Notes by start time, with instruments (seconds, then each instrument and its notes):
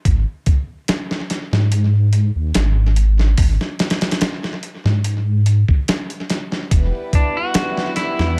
0.05 detuned saw bass G#1, kick, closed hi-hat
0.46 kick, closed hi-hat
0.88 snare, closed hi-hat
1.11 snare
1.30 snare, closed hi-hat
1.52 detuned saw bass G#2, snare
1.72 closed hi-hat
2.13 closed hi-hat
2.36 detuned saw bass D#2
2.54 detuned saw bass G#1, snare, closed hi-hat
2.96 closed hi-hat
3.19 snare
3.38 detuned saw bass G#1, kick, open hi-hat
3.61 snare
3.79 snare, closed hi-hat
3.90 snare, closed hi-hat
4.01 snare, closed hi-hat
4.11 snare, closed hi-hat
4.21 snare, closed hi-hat
4.44 snare
4.63 closed hi-hat
4.85 detuned saw bass G#2, snare
5.04 closed hi-hat
5.46 closed hi-hat
5.68 kick
5.88 snare, closed hi-hat
6.10 closed hi-hat
6.30 snare, closed hi-hat
6.52 snare
6.71 detuned saw bass E1, violin section G3 B3 E4 B4, kick, closed hi-hat
7.13 clean electric guitar D4, kick, closed hi-hat
7.37 clean electric guitar F#4
7.54 snare, closed hi-hat
7.77 snare
7.96 clean electric guitar E4, snare, closed hi-hat
8.19 detuned saw bass E2, snare